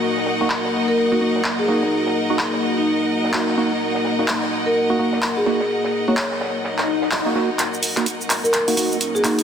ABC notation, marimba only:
X:1
M:4/4
L:1/16
Q:"Swing 16ths" 1/4=127
K:Ebm
V:1 name="Marimba"
z6 z B z4 z A E E | z6 z E4 z4 z | z6 z B z4 z A z2 | z3 d z12 |
z6 z B z4 z A E E |]